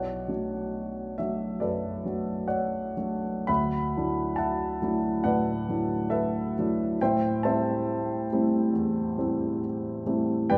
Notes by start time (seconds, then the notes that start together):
Already playing: B1 C#5 D5 F#5
0.28 F#3 A3 D4 F#4
1.18 F#3 A3 D4 F#4 E5
1.60 F#2 A4 B4 D5
2.05 F#3 A3 D4 F#4
2.48 C#5 D5 F#5
2.97 F#3 A3 D4 F#4
3.47 D2 E5 F#5 B5
3.97 F#3 A3 D4 E4
4.36 E5 F#5 A5
4.82 F#3 A3 D4 E4
5.24 A2 B4 D5 F#5
5.69 F#3 A3 D4 E4
6.10 A4 B4 E5
6.59 F#3 A3 D4 E4
7.01 A2 C5 E5 G5
7.43 G3 A3 C4 E4 C5 E5 A5
8.32 G3 A3 C4 E4
8.73 E2
9.18 G3 A3 C4 E4
10.06 G3 A3 C4 E4
10.50 G2 B4 D5 G5